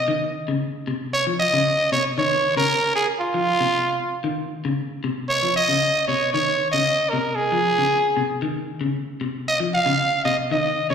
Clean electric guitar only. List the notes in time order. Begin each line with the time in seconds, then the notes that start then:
0.08 D#3
0.48 C#3
0.87 C3
1.27 F3
1.53 C#3
1.92 C3
2.18 D#3
2.57 C#3
3.34 F3
3.61 C3
4.24 D#3
4.65 C#3
5.04 C3
5.43 F3
5.69 C#3
6.08 C3
6.34 D#3
6.74 C#3
7.13 C3
7.52 F3
7.78 C#3
8.17 C3
8.42 D#3
8.81 C#3
9.21 C3
9.60 F3
9.86 C#3
10.25 C3
10.51 D#3
10.90 C#3